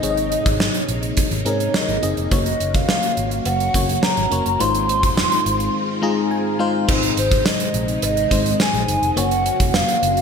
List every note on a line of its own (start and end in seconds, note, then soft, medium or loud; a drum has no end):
0.00 0.35 G#1 loud
0.00 0.85 G#2 medium
0.00 2.27 C3 medium
0.00 2.27 D#3 medium
0.00 4.56 A#3 medium
0.00 0.02 C4 medium
0.00 0.88 C4 medium
0.00 0.03 D#4 medium
0.00 2.28 D#4 medium
0.00 0.88 D#4 medium
0.00 0.03 G#4 medium
0.00 0.88 G#4 medium
0.00 2.32 C#5 medium
0.00 0.10 D#5 medium
0.00 0.89 D#5 loud
0.00 closed hi-hat medium
0.10 0.92 D#5 medium
0.17 closed hi-hat soft
0.32 closed hi-hat medium
0.46 0.67 G#1 medium
0.46 kick loud
0.46 closed hi-hat soft
0.60 snare loud
0.74 closed hi-hat medium
0.89 1.10 A#1 medium
0.89 closed hi-hat medium
1.03 closed hi-hat soft
1.17 kick medium
1.17 closed hi-hat medium
1.31 1.42 G#1 loud
1.31 closed hi-hat soft
1.45 1.67 G#2 medium
1.45 1.88 C4 medium
1.45 1.88 D#4 medium
1.45 1.89 G#4 medium
1.45 1.89 A#4 medium
1.45 1.77 C#5 medium
1.45 closed hi-hat medium
1.60 closed hi-hat soft
1.74 2.32 D#5 medium
1.74 snare loud
1.88 1.99 G#1 medium
1.88 closed hi-hat soft
2.02 2.14 F#1 medium
2.02 2.24 C4 medium
2.02 2.24 D#4 medium
2.02 2.24 G#4 medium
2.02 2.24 D#5 medium
2.02 closed hi-hat medium
2.17 2.28 F1 medium
2.17 closed hi-hat soft
2.31 2.53 F#1 loud
2.31 4.58 C#3 medium
2.31 4.58 F#3 medium
2.31 3.17 A#3 medium
2.31 3.17 C#4 medium
2.31 4.58 F#4 medium
2.31 3.17 F#4 medium
2.31 3.17 C#5 medium
2.31 2.77 D#5 loud
2.31 kick loud
2.31 closed hi-hat medium
2.31 cowbell medium
2.46 closed hi-hat medium
2.60 2.82 F#1 medium
2.60 closed hi-hat medium
2.74 3.45 F5 loud
2.74 kick loud
2.74 closed hi-hat soft
2.89 snare loud
2.89 cowbell medium
3.03 closed hi-hat medium
3.17 3.39 G#1 medium
3.17 closed hi-hat medium
3.31 closed hi-hat soft
3.45 3.67 F#1 medium
3.45 4.04 F#5 loud
3.45 closed hi-hat medium
3.45 cowbell medium
3.60 closed hi-hat soft
3.74 3.96 F#1 medium
3.74 4.17 A#3 medium
3.74 4.17 C#4 medium
3.74 4.17 F#4 medium
3.74 4.17 C#5 medium
3.74 kick medium
3.74 closed hi-hat medium
3.89 closed hi-hat medium
4.03 4.62 A#5 loud
4.03 snare loud
4.03 cowbell medium
4.17 4.28 G#1 medium
4.17 closed hi-hat soft
4.31 4.42 F1 medium
4.31 4.53 A#3 medium
4.31 4.53 C#4 medium
4.31 4.53 F#4 medium
4.31 4.53 C#5 medium
4.31 closed hi-hat medium
4.46 4.57 F#1 medium
4.46 closed hi-hat medium
4.59 5.03 G#1 loud
4.59 5.42 G#2 medium
4.59 6.86 D#3 medium
4.59 5.45 G#3 medium
4.59 6.86 G#3 medium
4.59 6.87 C4 medium
4.59 5.45 D#4 medium
4.59 6.86 F4 medium
4.59 5.45 F4 medium
4.59 5.46 C5 medium
4.59 6.32 C6 loud
4.59 closed hi-hat medium
4.59 cowbell medium
4.75 closed hi-hat medium
4.89 closed hi-hat medium
5.03 5.25 F1 medium
5.03 kick medium
5.03 closed hi-hat medium
5.17 snare loud
5.17 cowbell medium
5.32 closed hi-hat medium
5.46 5.67 G#1 medium
5.46 closed hi-hat medium
5.60 closed hi-hat soft
6.02 6.45 G#3 medium
6.02 6.45 D#4 medium
6.02 6.45 F4 medium
6.02 6.46 G#4 loud
6.02 6.29 A#5 medium
6.31 6.58 G#5 medium
6.59 6.81 G#3 medium
6.59 6.81 D#4 medium
6.59 6.81 F4 medium
6.59 6.82 C5 medium
6.59 6.86 F5 medium
6.88 7.10 G#1 loud
6.88 7.70 G#2 medium
6.88 9.15 C3 medium
6.88 9.15 D#3 medium
6.88 7.73 G#3 medium
6.88 9.15 G#3 medium
6.88 7.74 C4 medium
6.88 7.74 D#4 medium
6.88 9.15 D#4 medium
6.88 7.74 C5 medium
6.88 kick loud
6.88 crash loud
6.88 cowbell medium
7.03 closed hi-hat medium
7.17 7.39 G#1 medium
7.17 7.44 C5 medium
7.17 closed hi-hat medium
7.31 kick loud
7.31 closed hi-hat medium
7.46 8.00 D#5 medium
7.46 snare loud
7.46 tambourine medium
7.46 cowbell medium
7.60 closed hi-hat medium
7.74 7.96 A#1 medium
7.74 closed hi-hat medium
7.88 closed hi-hat medium
8.02 8.24 G#1 medium
8.02 8.57 D#5 loud
8.02 closed hi-hat medium
8.02 cowbell medium
8.17 closed hi-hat medium
8.31 8.53 G#1 medium
8.31 8.95 G#3 medium
8.31 8.95 C4 medium
8.31 8.95 D#4 medium
8.31 8.96 C5 medium
8.31 kick medium
8.31 closed hi-hat medium
8.46 closed hi-hat medium
8.60 9.20 G#5 loud
8.60 snare loud
8.60 tambourine medium
8.60 cowbell medium
8.74 8.85 A#1 medium
8.74 closed hi-hat soft
8.88 8.99 F#1 medium
8.88 closed hi-hat medium
9.02 9.13 F1 medium
9.02 closed hi-hat medium
9.16 9.49 F#1 medium
9.16 10.21 C#3 medium
9.16 10.21 F#3 medium
9.16 10.02 A#3 medium
9.16 10.21 A#3 medium
9.16 10.02 C#4 medium
9.16 10.02 F#4 medium
9.16 10.21 F#4 medium
9.16 10.03 C#5 medium
9.16 9.77 F#5 loud
9.16 closed hi-hat medium
9.16 cowbell medium
9.31 closed hi-hat medium
9.46 closed hi-hat medium
9.60 9.81 F1 medium
9.60 kick loud
9.60 closed hi-hat medium
9.74 10.21 F5 loud
9.74 snare loud
9.74 tambourine medium
9.74 cowbell medium
9.89 closed hi-hat medium
10.02 10.21 F#1 medium
10.02 closed hi-hat medium
10.17 closed hi-hat medium